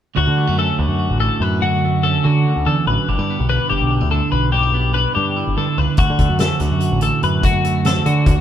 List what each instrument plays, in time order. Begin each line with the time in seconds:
0.15 clean electric guitar D2 F#4, picked electric bass D2
0.27 picked electric bass D3
0.37 clean electric guitar G3
0.47 picked electric bass F#2, clean electric guitar A3
0.58 clean electric guitar C#4 A4
0.79 picked electric bass D2, clean electric guitar D3 F#4
0.88 picked electric bass F#2
0.99 clean electric guitar F#4
1.10 picked electric bass A1
1.20 clean electric guitar A2 A4
1.40 picked electric bass F#2, clean electric guitar B4
1.62 clean electric guitar D2 F#4
1.85 clean electric guitar A3
2.03 clean electric guitar C#4 A4
2.24 picked electric bass D3, clean electric guitar D3 F#4
2.47 clean electric guitar D2
2.56 picked electric bass D2
2.66 clean electric guitar E2 A4, picked electric bass D3
2.87 picked electric bass A1, clean electric guitar F#2 B4
3.08 picked electric bass G1, clean electric guitar G2 D4 G4
3.18 picked electric bass G2, clean electric guitar E4
3.30 clean electric guitar B3
3.40 picked electric bass B1
3.49 clean electric guitar D4 B4
3.70 picked electric bass G1, clean electric guitar D3 G4
3.81 picked electric bass B1
3.90 clean electric guitar D4
4.01 picked electric bass D2, clean electric guitar E4
4.10 clean electric guitar D3 A4
4.32 picked electric bass B1, clean electric guitar B4
4.52 clean electric guitar G2 D4 G4
4.63 clean electric guitar E4
4.74 clean electric guitar B3
4.94 clean electric guitar D4 B4
5.14 picked electric bass G2, clean electric guitar D3 G4
5.36 clean electric guitar E4
5.47 picked electric bass G1
5.57 picked electric bass G2, clean electric guitar D3 A4
5.78 picked electric bass C#2, clean electric guitar B4
5.97 picked electric bass D2, clean electric guitar D2 F#4, kick, closed hi-hat
6.10 picked electric bass D3
6.19 clean electric guitar A3, kick, closed hi-hat
6.29 picked electric bass F#2
6.39 clean electric guitar C#4 A4, snare, closed hi-hat
6.59 picked electric bass D2, clean electric guitar D3 F#4, snare, closed hi-hat
6.71 picked electric bass F#2
6.80 clean electric guitar F#4, closed hi-hat
6.91 picked electric bass A1
7.00 clean electric guitar A2 A4, closed hi-hat
7.23 picked electric bass F#2, clean electric guitar B4, closed hi-hat
7.42 clean electric guitar D2 F#4, kick, closed hi-hat
7.65 clean electric guitar A3, closed hi-hat
7.85 clean electric guitar C#4 A4, snare, closed hi-hat
8.06 clean electric guitar D3 F#4, picked electric bass D3, closed hi-hat
8.26 clean electric guitar F#4, kick, closed hi-hat
8.38 picked electric bass D2